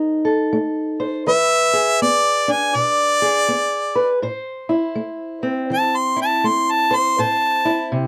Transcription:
0, 0, Header, 1, 3, 480
1, 0, Start_track
1, 0, Key_signature, 0, "minor"
1, 0, Tempo, 738007
1, 828, Time_signature, 4, 2, 24, 8
1, 5250, End_track
2, 0, Start_track
2, 0, Title_t, "Harmonica"
2, 0, Program_c, 0, 22
2, 836, Note_on_c, 0, 76, 120
2, 1298, Note_off_c, 0, 76, 0
2, 1312, Note_on_c, 0, 74, 104
2, 1635, Note_on_c, 0, 80, 89
2, 1645, Note_off_c, 0, 74, 0
2, 1791, Note_on_c, 0, 74, 117
2, 1800, Note_off_c, 0, 80, 0
2, 2724, Note_off_c, 0, 74, 0
2, 3729, Note_on_c, 0, 81, 96
2, 3878, Note_on_c, 0, 84, 84
2, 3888, Note_off_c, 0, 81, 0
2, 4029, Note_off_c, 0, 84, 0
2, 4043, Note_on_c, 0, 81, 100
2, 4208, Note_on_c, 0, 84, 93
2, 4217, Note_off_c, 0, 81, 0
2, 4365, Note_on_c, 0, 81, 121
2, 4374, Note_off_c, 0, 84, 0
2, 4522, Note_on_c, 0, 84, 100
2, 4532, Note_off_c, 0, 81, 0
2, 4691, Note_on_c, 0, 81, 111
2, 4701, Note_off_c, 0, 84, 0
2, 5145, Note_off_c, 0, 81, 0
2, 5250, End_track
3, 0, Start_track
3, 0, Title_t, "Steel-string acoustic guitar"
3, 0, Program_c, 1, 25
3, 0, Note_on_c, 1, 48, 65
3, 0, Note_on_c, 1, 63, 60
3, 0, Note_on_c, 1, 69, 59
3, 0, Note_on_c, 1, 72, 68
3, 154, Note_off_c, 1, 69, 0
3, 161, Note_on_c, 1, 69, 55
3, 307, Note_off_c, 1, 48, 0
3, 342, Note_on_c, 1, 57, 66
3, 641, Note_off_c, 1, 72, 0
3, 649, Note_on_c, 1, 72, 64
3, 789, Note_off_c, 1, 57, 0
3, 804, Note_off_c, 1, 69, 0
3, 806, Note_off_c, 1, 63, 0
3, 808, Note_off_c, 1, 72, 0
3, 824, Note_on_c, 1, 52, 80
3, 827, Note_on_c, 1, 71, 72
3, 1128, Note_on_c, 1, 68, 64
3, 1270, Note_off_c, 1, 52, 0
3, 1312, Note_on_c, 1, 59, 63
3, 1613, Note_on_c, 1, 62, 59
3, 1754, Note_off_c, 1, 59, 0
3, 1786, Note_on_c, 1, 47, 66
3, 2086, Note_off_c, 1, 68, 0
3, 2094, Note_on_c, 1, 68, 64
3, 2232, Note_off_c, 1, 47, 0
3, 2266, Note_on_c, 1, 59, 62
3, 2564, Note_off_c, 1, 71, 0
3, 2572, Note_on_c, 1, 71, 72
3, 2711, Note_off_c, 1, 59, 0
3, 2730, Note_off_c, 1, 71, 0
3, 2731, Note_off_c, 1, 62, 0
3, 2731, Note_off_c, 1, 68, 0
3, 2747, Note_on_c, 1, 45, 73
3, 2751, Note_on_c, 1, 72, 74
3, 3051, Note_on_c, 1, 64, 65
3, 3192, Note_off_c, 1, 45, 0
3, 3222, Note_on_c, 1, 57, 61
3, 3531, Note_on_c, 1, 60, 58
3, 3669, Note_off_c, 1, 57, 0
3, 3708, Note_on_c, 1, 52, 67
3, 4006, Note_off_c, 1, 64, 0
3, 4009, Note_on_c, 1, 64, 60
3, 4152, Note_off_c, 1, 52, 0
3, 4188, Note_on_c, 1, 57, 63
3, 4485, Note_off_c, 1, 72, 0
3, 4493, Note_on_c, 1, 72, 71
3, 4632, Note_off_c, 1, 57, 0
3, 4650, Note_off_c, 1, 72, 0
3, 4673, Note_on_c, 1, 45, 76
3, 4677, Note_on_c, 1, 72, 71
3, 4967, Note_off_c, 1, 64, 0
3, 4977, Note_on_c, 1, 64, 68
3, 5114, Note_off_c, 1, 45, 0
3, 5150, Note_on_c, 1, 48, 67
3, 5250, Note_off_c, 1, 48, 0
3, 5250, Note_off_c, 1, 60, 0
3, 5250, Note_off_c, 1, 64, 0
3, 5250, Note_off_c, 1, 72, 0
3, 5250, End_track
0, 0, End_of_file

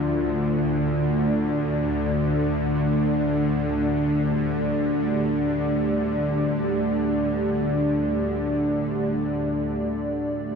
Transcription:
0, 0, Header, 1, 4, 480
1, 0, Start_track
1, 0, Key_signature, -1, "minor"
1, 0, Tempo, 500000
1, 10131, End_track
2, 0, Start_track
2, 0, Title_t, "Analog synth pad"
2, 0, Program_c, 0, 89
2, 0, Note_on_c, 0, 57, 81
2, 0, Note_on_c, 0, 62, 74
2, 0, Note_on_c, 0, 65, 91
2, 0, Note_on_c, 0, 74, 79
2, 3437, Note_on_c, 0, 67, 82
2, 3755, Note_off_c, 0, 65, 0
2, 10131, Note_off_c, 0, 57, 0
2, 10131, Note_off_c, 0, 62, 0
2, 10131, Note_off_c, 0, 67, 0
2, 10131, Note_off_c, 0, 74, 0
2, 10131, End_track
3, 0, Start_track
3, 0, Title_t, "Singing bowl"
3, 0, Program_c, 1, 14
3, 0, Note_on_c, 1, 53, 64
3, 0, Note_on_c, 1, 65, 63
3, 9163, Note_off_c, 1, 53, 0
3, 9163, Note_off_c, 1, 65, 0
3, 10131, End_track
4, 0, Start_track
4, 0, Title_t, "Synth drone"
4, 0, Program_c, 2, 95
4, 0, Note_on_c, 2, 38, 76
4, 0, Note_on_c, 2, 50, 73
4, 9121, Note_off_c, 2, 50, 0
4, 9125, Note_off_c, 2, 38, 0
4, 9132, Note_on_c, 2, 50, 66
4, 9137, Note_on_c, 2, 38, 72
4, 10131, Note_off_c, 2, 38, 0
4, 10131, Note_off_c, 2, 50, 0
4, 10131, End_track
0, 0, End_of_file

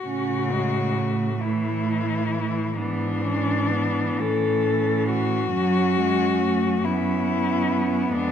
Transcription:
0, 0, Header, 1, 5, 480
1, 0, Start_track
1, 0, Key_signature, 3, "major"
1, 0, Tempo, 910470
1, 22, Time_signature, 6, 3, 24, 8
1, 1461, Tempo, 938967
1, 2421, Tempo, 875912
1, 4430, End_track
2, 0, Start_track
2, 0, Title_t, "Cello"
2, 0, Program_c, 0, 42
2, 0, Note_on_c, 0, 66, 54
2, 742, Note_on_c, 0, 64, 49
2, 750, Note_off_c, 0, 66, 0
2, 1465, Note_on_c, 0, 62, 67
2, 1472, Note_off_c, 0, 64, 0
2, 2192, Note_on_c, 0, 69, 62
2, 2200, Note_off_c, 0, 62, 0
2, 2662, Note_off_c, 0, 69, 0
2, 2665, Note_on_c, 0, 66, 79
2, 3622, Note_on_c, 0, 64, 69
2, 3630, Note_off_c, 0, 66, 0
2, 4335, Note_off_c, 0, 64, 0
2, 4338, Note_on_c, 0, 62, 75
2, 4430, Note_off_c, 0, 62, 0
2, 4430, End_track
3, 0, Start_track
3, 0, Title_t, "Cello"
3, 0, Program_c, 1, 42
3, 21, Note_on_c, 1, 61, 48
3, 274, Note_on_c, 1, 56, 43
3, 282, Note_off_c, 1, 61, 0
3, 512, Note_on_c, 1, 57, 44
3, 520, Note_off_c, 1, 56, 0
3, 1464, Note_off_c, 1, 57, 0
3, 1466, Note_on_c, 1, 59, 46
3, 1694, Note_on_c, 1, 61, 48
3, 1702, Note_off_c, 1, 59, 0
3, 1944, Note_on_c, 1, 59, 47
3, 1951, Note_off_c, 1, 61, 0
3, 2195, Note_on_c, 1, 61, 45
3, 2202, Note_off_c, 1, 59, 0
3, 2902, Note_off_c, 1, 61, 0
3, 2906, Note_on_c, 1, 61, 52
3, 3608, Note_off_c, 1, 61, 0
3, 3625, Note_on_c, 1, 61, 50
3, 4328, Note_off_c, 1, 61, 0
3, 4343, Note_on_c, 1, 56, 51
3, 4430, Note_off_c, 1, 56, 0
3, 4430, End_track
4, 0, Start_track
4, 0, Title_t, "Cello"
4, 0, Program_c, 2, 42
4, 25, Note_on_c, 2, 49, 42
4, 727, Note_off_c, 2, 49, 0
4, 751, Note_on_c, 2, 52, 45
4, 1450, Note_off_c, 2, 52, 0
4, 1465, Note_on_c, 2, 52, 44
4, 2885, Note_off_c, 2, 52, 0
4, 2910, Note_on_c, 2, 54, 49
4, 3141, Note_off_c, 2, 54, 0
4, 3149, Note_on_c, 2, 56, 48
4, 3381, Note_on_c, 2, 57, 49
4, 3389, Note_off_c, 2, 56, 0
4, 3626, Note_on_c, 2, 59, 51
4, 3634, Note_off_c, 2, 57, 0
4, 4430, Note_off_c, 2, 59, 0
4, 4430, End_track
5, 0, Start_track
5, 0, Title_t, "Cello"
5, 0, Program_c, 3, 42
5, 22, Note_on_c, 3, 45, 40
5, 1459, Note_on_c, 3, 44, 46
5, 1467, Note_off_c, 3, 45, 0
5, 2187, Note_off_c, 3, 44, 0
5, 2190, Note_on_c, 3, 45, 47
5, 2892, Note_off_c, 3, 45, 0
5, 2907, Note_on_c, 3, 42, 53
5, 4320, Note_off_c, 3, 42, 0
5, 4338, Note_on_c, 3, 41, 53
5, 4430, Note_off_c, 3, 41, 0
5, 4430, End_track
0, 0, End_of_file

